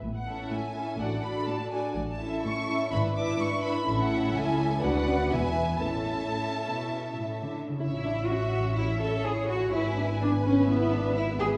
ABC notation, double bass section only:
X:1
M:4/4
L:1/8
Q:1/4=125
K:A
V:1 name="Double bass section" clef=bass
A,,,2 z2 A,,,2 z2 | A,,,2 z2 G,,,2 z2 | A,,,2 z2 D,,2 E,,,2 | A,,,2 z6 |
A,,,8 | G,,,8 |]